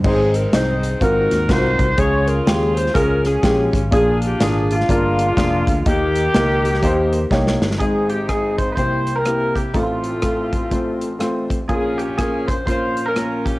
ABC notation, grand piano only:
X:1
M:4/4
L:1/8
Q:"Swing" 1/4=124
K:Ab
V:1 name="Grand piano"
[CEAc] z [CEAe] z [CF_GB] z [CFGB] z | [A,DFA] z [A,DFG] z [A,DFA] z [A,DFG] z | [B,=DFA] z [B,DFA] z [B,DFB] z [B,DFA] z | [B,EGB] z [B,EGB] z [B,EGc] z [B,EGd] z |
[A,CEA] z [A,CEA] z [B,C=EG] z [B,CEG] z | [=A,CF=A] z [A,CFA] z [A,CFc] z [A,CFc] z | [B,DFB] z [B,DFB] z [B,DFB] z [B,DFB] z |]
V:2 name="Grand piano" clef=bass
A,,3 z A,,3 z | D,3 z4 z | B,,3 z4 z | E,3 z4 z |
[A,,,A,,]4 [C,,C,]4 | [=A,,,=A,,]8 | [B,,,B,,]8 |]